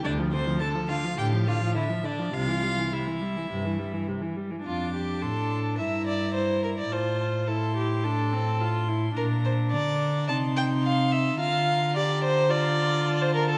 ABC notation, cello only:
X:1
M:4/4
L:1/8
Q:1/4=106
K:F
V:1 name="Cello" clef=bass
D,,2 z2 A,,2 z2 | C,,2 z2 G,,2 z2 | F,,2 A,,2 G,,4 | A,,8 |
B,,2 D,2 C,4 | D,8 |]